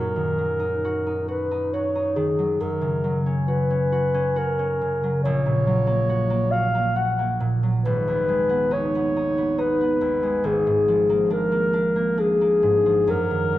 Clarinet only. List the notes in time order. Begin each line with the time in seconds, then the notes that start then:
Already playing: A#4
1.29 B4
1.73 C#5
2.16 G#4
2.61 A#4
3.48 B4
4.38 A#4
5.24 C#5
6.52 F5
6.97 F#5
7.84 B4
8.73 C#5
9.59 B4
10.46 G#4
11.32 A#4
12.20 G#4
13.10 A#4